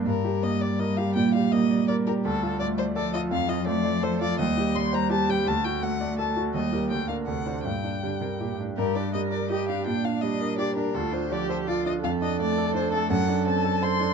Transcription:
<<
  \new Staff \with { instrumentName = "Violin" } { \time 3/4 \key g \minor \tempo 4 = 166 bes'4 ees''8 d''8 ees''8 f''8 | g''8 f''8 ees''4 d''8 bes'8 | a'4 d''8 c''8 d''8 ees''8 | f''8 ees''8 d''4 c''8 d''8 |
ees''4 c'''8 bes''8 a''8 g''8 | a''8 g''8 fis''4 a''8 r8 | ees''4 g''8 f''8 fis''4 | g''2~ g''8 r8 |
bes'8 d''8 ees''8 d''8 ees''8 f''8 | g''8 f''8 ees''4 d''8 bes'8 | a'8 c''8 d''8 c''8 d''8 ees''8 | f''8 ees''8 d''4 c''8 a'8 |
\key d \mixolydian fis''4 a''4 c'''4 | }
  \new Staff \with { instrumentName = "Grand piano" } { \time 3/4 \key g \minor g,8 g'8 bes8 d''8 bes'8 g'8 | bes,8 g'8 bes8 d''8 bes'8 g'8 | d,8 f'8 a8 d''8 a'8 f'8 | f,8 f'8 a8 d''8 a'8 f'8 |
ees,8 g'8 g8 c''8 g'8 g8 | d,8 fis'8 a8 d''8 a'8 fis'8 | ees,8 <g' bes'>8 d,8 <d' bes'>8 d,8 <d' c''>8 | g,8 d'8 g8 bes'8 g'8 d'8 |
g,8 d'8 g8 bes'8 g'8 d'8 | bes,8 d'8 g8 bes'8 g'8 d'8 | d,8 d'8 f8 a'8 f'8 d'8 | f,8 d'8 a8 a'8 d'8 a8 |
\key d \mixolydian fis,8 d'8 c'8 a'8 c''8 d'8 | }
  \new Staff \with { instrumentName = "Cello" } { \time 3/4 \key g \minor g2.~ | g2.~ | g2 f4~ | f2. |
g2. | a2. | g4 bes4 c4 | bes,4 d8 c8 bes,8 a,8 |
g'4 bes'4 g'4 | d'2. | f'4 g'4 f'4 | a'2. |
\key d \mixolydian a'2. | }
>>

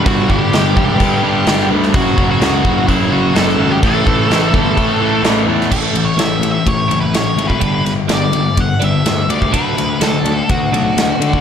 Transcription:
<<
  \new Staff \with { instrumentName = "Lead electric guitar" } { \time 4/4 \key a \mixolydian \tempo 4 = 126 <fis' fis''>8 <g' g''>2. r8 | <fis' fis''>8. <fis' fis''>4~ <fis' fis''>16 <e' e''>8 <fis' fis''>8 <a' a''>8. <g' g''>16 | <a' a''>2. r4 | \key a \major \tuplet 3/2 { a'4 cis''8 e''4 e''8 cis''4 b'8 cis''4 b'8~ } |
b'8 r8 d''4 fis''8 e''4 d''8 | b'4 a'4 fis'2 | }
  \new Staff \with { instrumentName = "Clean electric guitar" } { \time 4/4 \key a \mixolydian r1 | r1 | r1 | \key a \major <e a cis' e'>8 r8 <e a cis' e'>8 r4 <e a cis' e'>8 r4 |
<d g b d'>8 r8 <d g b d'>8 r4 <d g b d'>8 r4 | <d fis a d'>8 r8 <d fis a d'>8 r4 <d fis a d'>8 r4 | }
  \new Staff \with { instrumentName = "Distorted electric guitar" } { \clef bass \time 4/4 \key a \mixolydian <g, d g>8 <g, d g>8 <g, d g>8 <g, d g>8 <g, d g>8 <g, d g>8 <g, d g>8 <g, d g>8 | <fis, cis fis>8 <fis, cis fis>8 <fis, cis fis>8 <fis, cis fis>8 <fis, cis fis>8 <fis, cis fis>8 <fis, cis fis>8 <fis, cis fis>8 | <a, e a>8 <a, e a>8 <a, e a>8 <a, e a>8 <a, e a>8 <a, e a>8 <a, e a>8 <a, e a>8 | \key a \major <a, e>8 <a, e>8 <a, e>8 <a, e>8 <a, e>8 <a, e>8 <a, e>8 <a, e a>8 |
<g, d g>8 <g, d>8 <g, d>8 <g, d>8 <g, d>8 <g, d>8 <g, d>8 <g, d g>8 | <d a d'>8 <d a>8 <d a>8 <d a>8 <d a>8 <d a>8 <d a>8 <d a d'>8 | }
  \new Staff \with { instrumentName = "Distorted electric guitar" } { \clef bass \time 4/4 \key a \mixolydian <g, d g>8 <g, d g>8 <g, d g>8 <g, d g>8 <g, d g>8 <g, d g>8 <g, d g>8 <g, d g>8 | <fis, cis fis>8 <fis, cis fis>8 <fis, cis fis>8 <fis, cis fis>8 <fis, cis fis>8 <fis, cis fis>8 <fis, cis fis>8 <fis, cis fis>8 | <a, e a>8 <a, e a>8 <a, e a>8 <a, e a>8 <a, e a>8 <a, e a>8 <a, e a>8 <a, e a>8 | \key a \major r1 |
r1 | r1 | }
  \new Staff \with { instrumentName = "Picked electric bass" } { \clef bass \time 4/4 \key a \mixolydian g,,8 g,,8 g,,8 e,,8 g,4 g,,8 d,8 | fis,,4 cis,8 fis,,8 fis,,4 fis,,8 gis,,8 | a,,8 a,,8 a,,8 g,,8 a,4 a,,8 e,8 | \key a \major a,,8 a,,8 a,,8 a,,8 a,,8 fis,,8 a,,8 gis,,8 |
g,,8 g,,8 g,,8 g,,8 g,,8 g,,8 d,8 d,8 | d,8 d,8 d,8 d,8 d,8 b,,8 d,8 d8 | }
  \new DrumStaff \with { instrumentName = "Drums" } \drummode { \time 4/4 <cymc bd>8 bd8 <cymc sn>8 bd8 <cymc bd>4 <cymc sn>16 sn8 sn16 | <cymc bd>8 bd8 <cymc sn>8 bd8 <cymc bd>4 <cymc sn>16 sn8. | <cymc bd>8 bd8 <cymc sn>8 bd8 <cymc bd>4 <cymc sn>8. sn16 | <cymc bd>8 cymr8 <cymr sn>8 cymr8 <bd cymr>8 cymr8 <cymr sn>8 cymr16 bd16 |
<bd cymr>8 <cymr sn>8 <cymr sn>8 cymr8 <bd cymr>8 cymr8 <cymr sn>8 cymr16 bd16 | <bd cymr>8 <cymr sn>8 <cymr sn>8 cymr8 <bd cymr>8 cymr8 <cymr sn>8 cymr16 bd16 | }
>>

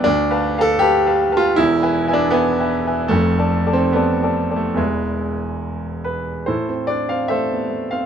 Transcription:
\new Staff \with { instrumentName = "Grand piano" } { \time 2/4 \key a \minor \tempo 4 = 74 << { \tuplet 3/2 { d,8 <b' f'' a''>8 <b' f'' a''>8 <b' f'' a''>8 <b' f'' a''>8 <b' f'' a''>8 } | \tuplet 3/2 { <e,, e,>8 <b' e'' gis''>8 <b' e'' gis''>8 <b' e'' gis''>8 <b' e'' gis''>8 <b' e'' gis''>8 } | \tuplet 3/2 { <f,, f,>8 <a' d'' a''>8 <a' d'' a''>8 <a' d'' a''>8 <a' d'' a''>8 <a' d'' a''>8 } | <e,, e, b' e''>2 |
a,16 c'16 d'16 c'16 a16 b16 a16 c'16 | } \\ { d'8. a'16 g'8. f'16 | e'8. d'16 b4 | a8. c'16 b8. a16 | gis4. b'8 |
<e' a' c''>8 d''16 f''16 <a' c'' e''>8. f''16 | } >> }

